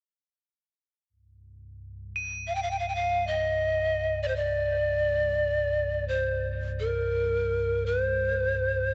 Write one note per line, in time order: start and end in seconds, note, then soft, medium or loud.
1.09 8.94 C2 medium
1.09 8.94 G2 medium
2.16 8.94 D#7 soft
2.47 2.57 F5 medium
2.55 2.64 G5 medium
2.63 2.72 F5 medium
2.71 2.81 G5 medium
2.79 2.90 F5 medium
2.89 2.97 G5 medium
2.95 3.29 F5 medium
3.27 4.21 D#5 medium
4.23 4.29 D5 medium
4.28 4.38 C5 medium
4.36 6.07 D5 medium
6.08 6.48 C5 medium
6.80 7.88 A#4 medium
7.86 8.94 C5 medium